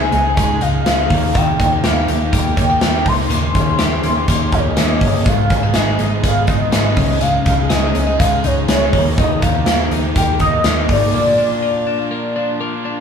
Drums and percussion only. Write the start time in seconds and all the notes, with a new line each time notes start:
0.12 closed hi-hat
0.37 kick, closed hi-hat
0.61 closed hi-hat
0.86 snare, closed hi-hat
1.10 kick, open hi-hat
1.35 kick, closed hi-hat
1.60 kick, closed hi-hat
1.84 snare, closed hi-hat
2.08 closed hi-hat
2.33 kick, closed hi-hat
2.57 kick, closed hi-hat
2.81 snare, closed hi-hat
3.06 kick, open hi-hat
3.30 closed hi-hat
3.55 kick, closed hi-hat
3.79 snare, closed hi-hat
4.03 closed hi-hat
4.28 kick, closed hi-hat
4.52 kick, closed hi-hat
4.77 snare, closed hi-hat
5.01 kick, open hi-hat
5.26 kick, closed hi-hat
5.50 kick, closed hi-hat
5.74 snare, closed hi-hat
5.99 closed hi-hat
6.24 kick, closed hi-hat
6.47 kick, closed hi-hat
6.72 snare, closed hi-hat
6.96 kick, open hi-hat
7.21 closed hi-hat
7.46 kick, closed hi-hat
7.70 snare, closed hi-hat
7.95 closed hi-hat
8.20 kick, closed hi-hat
8.44 closed hi-hat
8.69 snare, closed hi-hat
8.93 kick, open hi-hat
9.18 kick, closed hi-hat
9.42 kick, closed hi-hat
9.66 snare, closed hi-hat
9.91 closed hi-hat
10.16 kick, closed hi-hat
10.39 kick, closed hi-hat
10.64 snare, closed hi-hat
10.89 kick, open hi-hat